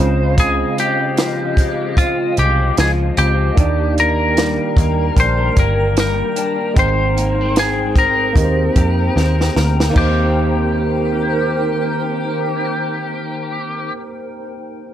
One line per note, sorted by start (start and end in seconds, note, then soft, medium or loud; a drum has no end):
0.00 0.62 C#2 loud
0.00 0.37 C#3 medium
0.00 0.78 G#3 medium
0.00 3.12 G#3 medium
0.00 0.39 C4 medium
0.00 3.13 C4 medium
0.00 3.13 C#4 medium
0.00 3.14 F4 medium
0.00 0.35 C5 medium
0.00 3.15 C5 medium
0.00 3.53 D#5 medium
0.00 3.53 F5 medium
0.38 3.57 C#3 medium
0.38 1.97 C4 medium
0.38 0.79 G#4 loud
0.38 kick loud
0.38 closed hi-hat loud
0.78 1.57 G#3 medium
0.78 1.98 G4 medium
0.78 closed hi-hat medium
1.17 2.77 F3 medium
1.17 snare loud
1.17 closed hi-hat medium
1.57 2.37 G#3 medium
1.57 kick medium
1.57 closed hi-hat medium
1.97 3.16 C4 medium
1.97 2.39 F4 loud
1.97 kick loud
1.97 closed hi-hat medium
2.37 2.70 C2 loud
2.37 3.67 G#3 medium
2.37 2.79 G4 medium
2.37 closed hi-hat medium
2.77 3.10 C#2 loud
2.77 3.67 F3 medium
2.77 2.90 G#4 medium
2.77 snare loud
2.77 closed hi-hat loud
3.17 3.50 C#2 loud
3.17 3.57 C4 medium
3.17 3.94 G4 loud
3.17 closed hi-hat medium
3.55 4.57 D#2 loud
3.55 7.07 D#3 medium
3.55 6.72 A#3 medium
3.55 6.72 D4 medium
3.55 5.16 D4 medium
3.55 6.73 D#4 medium
3.55 6.74 G4 medium
3.55 6.73 A#4 medium
3.55 9.92 G5 medium
3.55 6.74 A#5 medium
3.55 kick loud
3.55 closed hi-hat medium
3.60 6.74 D5 medium
3.98 4.77 A#3 medium
3.98 5.14 A#4 loud
3.98 closed hi-hat medium
4.37 5.97 G3 medium
4.37 snare loud
4.37 closed hi-hat medium
4.77 5.09 D#2 loud
4.77 5.56 A#3 medium
4.77 kick medium
4.77 closed hi-hat medium
5.17 5.49 A#1 loud
5.17 6.36 D4 medium
5.17 5.60 C5 loud
5.17 kick medium
5.17 closed hi-hat medium
5.57 6.21 G1 loud
5.57 6.86 A#3 medium
5.57 5.99 A#4 medium
5.57 kick loud
5.57 closed hi-hat medium
5.97 9.48 G3 medium
5.97 6.81 A#4 medium
5.97 snare loud
5.97 closed hi-hat loud
6.36 6.77 D4 medium
6.36 closed hi-hat medium
6.74 8.32 G#1 loud
6.74 8.46 G#2 medium
6.74 8.32 G#3 medium
6.74 8.33 C4 medium
6.74 8.33 D#4 medium
6.74 8.76 D#4 medium
6.74 8.34 G#4 medium
6.74 9.92 C5 medium
6.74 8.34 G5 medium
6.74 kick loud
6.74 closed hi-hat medium
6.79 8.34 C5 medium
6.79 7.60 C5 loud
7.17 7.41 A#3 medium
7.17 closed hi-hat medium
7.41 7.95 C4 soft
7.56 7.95 G#4 medium
7.56 snare loud
7.56 closed hi-hat medium
7.96 9.16 C4 medium
7.96 9.53 A#4 medium
7.96 kick medium
7.96 closed hi-hat medium
8.33 8.68 D#2 loud
8.33 9.89 A#3 medium
8.33 9.92 C4 medium
8.33 9.92 D#4 medium
8.33 9.93 G4 medium
8.33 9.95 A#5 medium
8.33 kick medium
8.33 closed hi-hat medium
8.38 8.45 A#4 medium
8.45 9.97 C5 medium
8.76 9.08 F2 medium
8.76 10.10 G4 medium
8.76 kick loud
8.76 closed hi-hat medium
9.16 9.48 D#2 loud
9.16 10.04 C4 medium
9.16 snare medium
9.41 snare medium
9.56 9.88 D2 medium
9.56 10.07 A#4 medium
9.56 snare medium
9.80 snare loud
9.90 13.89 D#3 medium
9.90 13.85 A#3 medium
9.90 13.88 D#4 medium
9.96 13.91 D#2 medium
9.96 13.97 A#3 medium
9.96 13.91 D#4 medium
9.96 13.92 G4 medium
9.96 13.91 A#4 medium
9.96 13.91 C5 medium
9.96 13.91 G5 medium
9.96 kick loud
9.96 crash medium
10.00 14.03 C4 medium
10.00 13.95 C5 medium
10.11 14.09 G4 loud